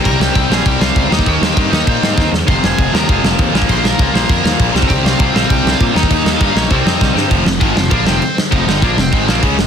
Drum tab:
CC |x---x---x---x---|x---x---x-------|x---x---x---x---|x---x---x---x---|
SD |--o---o---o---o-|--o---o---o-o-o-|--o---o---o---o-|--o---o---o---o-|
BD |o---o---o---o--o|o---o---o---o---|o---o---o---o--o|o---o---o---o--o|

CC |x---x---x---x---|x---x---x-------|x---x---x---x---|x---x---x---x---|
SD |--o---o---o---o-|--o---o---o-o-o-|--o---o---o---o-|--o---o---o---o-|
BD |o---o---o---o--o|o---o---o---o---|o---o---o-------|o---o---o---o---|